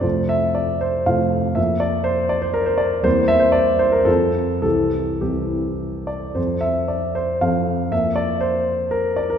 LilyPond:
<<
  \new Staff \with { instrumentName = "Grand piano" } { \time 3/4 \key f \major \tempo 4 = 118 c''8 e''8 d''8 c''8 f''4 | e''8 d''8 c''8 d''16 c''16 bes'16 c''16 d''8 | c''8 e''16 c''16 d''8 c''16 bes'16 a'4 | a'4 g'4. d''8 |
c''8 e''8 d''8 c''8 f''4 | e''8 d''8 c''4 bes'8 d''16 bes'16 | }
  \new Staff \with { instrumentName = "Grand piano" } { \clef bass \time 3/4 \key f \major <f, c a f'>2 <f, c a f'>4 | <f, f bes f'>2. | <e, g bes c'>2 <f, f c' f'>4 | <c, e c' g'>4 <c, e c'>2 |
<f, f c' a'>2 <f, f c' a'>4 | <f, f bes bes'>2. | }
>>